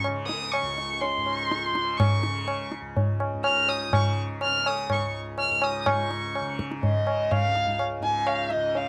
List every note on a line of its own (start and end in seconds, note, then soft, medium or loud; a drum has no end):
0.00 0.61 C#2 medium
0.00 1.16 G#2 medium
0.00 0.08 C#3 medium
0.04 1.71 C#3 medium
0.04 tabla na medium
0.27 0.53 D#6 medium
0.27 tabla te medium
0.52 1.02 C#6 medium
0.52 tabla na medium
0.62 2.80 C#2 medium
0.78 tabla te medium
1.01 1.99 C6 medium
1.01 tabla tin medium
1.17 3.33 G#2 medium
1.26 tabla na medium
1.51 tabla te medium
1.71 2.26 C#3 medium
1.75 tabla te medium
1.98 2.71 C#6 medium
1.98 tabla na loud
1.98 tabla ge medium
2.23 3.89 C#3 medium
2.23 tabla te medium
2.48 tabla na medium
2.72 tabla te medium
2.81 4.97 C#2 medium
2.97 tabla tin medium
2.97 tabla ge medium
3.20 tabla na medium
3.33 5.49 G#2 medium
3.44 3.71 F6 medium
3.44 tabla na medium
3.69 3.93 D#6 medium
3.69 tabla na medium
3.89 4.43 C#3 medium
3.89 tabla na medium
3.89 tabla ge medium
3.94 4.16 C#6 medium
4.41 6.41 C#3 medium
4.41 4.69 F6 loud
4.41 tabla na medium
4.66 4.91 D#6 medium
4.66 tabla na medium
4.90 5.14 C#6 medium
4.90 tabla na medium
4.90 tabla ge medium
4.97 7.47 C#2 medium
5.38 5.65 F6 medium
5.38 tabla na medium
5.50 5.86 G#2 medium
5.62 5.81 D#6 medium
5.62 tabla na medium
5.81 5.88 D#6 medium
5.86 8.00 G#2 medium
5.86 6.59 C#6 medium
5.86 tabla na loud
5.86 tabla ge medium
6.11 tabla te medium
6.35 tabla na medium
6.41 6.95 C#3 medium
6.59 tabla ke medium
6.71 tabla te medium
6.82 7.33 D#5 medium
6.82 tabla tin medium
6.82 tabla ge medium
6.95 8.55 C#3 medium
7.07 tabla na medium
7.31 7.79 F5 loud
7.31 tabla na medium
7.31 tabla ge medium
7.47 8.88 C#2 medium
7.55 tabla te medium
7.67 tabla ge medium
7.79 tabla na medium
8.00 8.88 G#2 medium
8.00 8.29 G#5 medium
8.00 tabla te soft
8.27 8.53 F5 medium
8.27 tabla na medium
8.50 8.78 D#5 medium
8.50 tabla te medium
8.55 8.88 C#3 medium
8.75 8.88 F5 medium
8.75 tabla tin medium